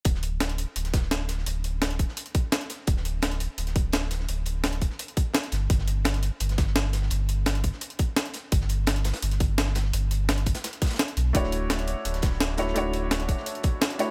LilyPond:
<<
  \new Staff \with { instrumentName = "Felt piano" } { \time 4/4 \key d \major \tempo 4 = 170 r1 | r1 | r1 | r1 |
r1 | r1 | r1 | r1 |
<a d' e' fis' cis''>2.~ <a d' e' fis' cis''>8 <a d' e' fis' cis''>8 | <a d' e' fis' cis''>2.~ <a d' e' fis' cis''>8 <a d' e' fis' cis''>8 | }
  \new Staff \with { instrumentName = "Sub bass" } { \clef bass \time 4/4 \key d \major d,,4. r8 d,,2 | d,,4. r2 r8 | d,,4. r8 d,,2 | d,,4. r2 g,,8 |
g,,4. r8 g,,2 | g,,4. r2 r8 | g,,4. r8 g,,2 | g,,4. r2 b,,8 |
d,,4. r8 d,,2 | d,,4. r2 r8 | }
  \new DrumStaff \with { instrumentName = "Drums" } \drummode { \time 4/4 <hh bd>16 sn16 hh8 <hh sn>16 <hh sn>16 hh8 hh16 <hh sn>16 <hh bd sn>16 sn16 <hh sn>8 <hh sn>16 sn16 | hh8 hh8 <hh sn>16 hh16 <hh bd>16 sn16 hh16 hh16 <hh bd>8 <hh sn>16 <hh sn>16 <hh sn>8 | <hh bd>16 sn16 hh8 <hh sn>16 <hh sn>16 hh8 hh16 <hh sn>16 <hh bd>8 <hh sn>16 sn16 <hh sn>16 sn16 | hh8 hh8 <hh sn>16 hh16 <hh bd>16 sn16 hh16 hh16 <hh bd>8 <hh sn>16 <hh sn>16 <hh sn>8 |
<hh bd>16 sn16 hh8 <hh sn>16 <hh sn>16 hh8 hh16 <hh sn>16 <hh bd sn>16 sn16 <hh sn>8 <hh sn>16 sn16 | hh8 hh8 <hh sn>16 hh16 <hh bd>16 sn16 hh16 hh16 <hh bd>8 <hh sn>16 <hh sn>16 <hh sn>8 | <hh bd>16 sn16 hh8 <hh sn>16 <hh sn>16 <hh sn>16 <hh sn>16 hh16 <hh sn>16 <hh bd>8 <hh sn>16 sn16 <hh sn>16 sn16 | hh8 hh8 <hh sn>16 hh16 <hh bd>16 <hh sn>16 <hh sn>16 <hh sn>16 <hh bd sn>32 <hh sn>32 <hh sn>32 <hh sn>32 <hh sn>16 hh16 hh8 |
<hh bd>16 sn16 hh8 <hh sn>16 <hh sn>16 hh8 hh16 <hh sn>16 <hh bd sn>16 sn16 <hh sn>8 <hh sn>16 sn16 | hh8 hh8 <hh sn>16 hh16 <hh bd>16 sn16 hh16 hh16 <hh bd>8 <hh sn>16 <hh sn>16 <hh sn>8 | }
>>